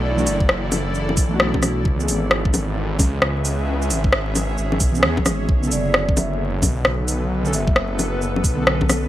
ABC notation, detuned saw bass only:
X:1
M:4/4
L:1/16
Q:"Swing 16ths" 1/4=132
K:Bdor
V:1 name="Detuned saw bass" clef=bass
B,,,2 F,,,8 B,,,6 | C,,2 G,,,8 C,,2 C,,4- | C,,2 G,,,6 G,,,2 B,,,2 E,, z G,,,2 | B,,,2 F,,,8 B,,,2 B,,,4- |
B,,,2 F,,,8 B,,,6 |]